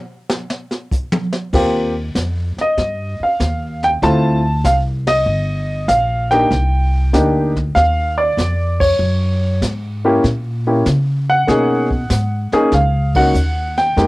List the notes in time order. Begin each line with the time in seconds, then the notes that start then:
0.30 snare
0.50 snare
0.71 snare
0.91 kick, hi-hat pedal
1.12 high tom
1.33 snare
1.53 D#2 A#3 C4 F4 G4, brush sweep, kick, snare, crash
2.15 F2, kick, snare, hi-hat pedal
2.57 muted upright bass stroke, snare
2.61 D#5
2.77 G2, brush sweep, kick, snare
3.20 F5, muted upright bass stroke
3.40 D#2, kick, snare, hi-hat pedal
3.83 G5, snare
4.02 D2 A3 C4 E4 F4 A5, brush sweep, kick, snare
4.64 C2 F5, kick, snare, hi-hat pedal
5.07 D#5, snare, ride
5.26 G1, brush sweep
5.88 A#1 F5, kick, snare, hi-hat pedal
6.31 A#3 D4 D#4 G4 G5, snare
6.51 C2, brush sweep, kick, snare
7.13 D2 A#3 D4 D#4 G4, kick, snare, hi-hat pedal
7.56 kick, snare
7.75 D#2 F5, brush sweep, kick, snare
8.18 D5
8.37 F2, kick, snare, hi-hat pedal
8.80 C#5, kick, ride
8.99 F#2, brush sweep
9.61 G#2, kick, snare, hi-hat pedal
10.05 A#3 C#4 E4 G4
10.24 A#2, brush sweep, kick, snare
10.67 A#3 C#4 E4 G4
10.86 C#3, kick, snare, hi-hat pedal
11.30 F#5
11.47 B2 A#3 C#4 D#4 G#4, brush sweep, kick, snare
11.91 kick
12.10 G#2, kick, snare, hi-hat pedal
12.52 A#3 C#4 D#4 G#4, muted upright bass stroke, snare
12.72 C#2 F5, brush sweep, kick, snare
13.15 A#3 C#4 D#4 F#4 F#5, kick, ride
13.34 D#2, hi-hat pedal
13.77 G5, snare
13.96 F2 G#3 A#3 D#4 G4, brush sweep, kick, snare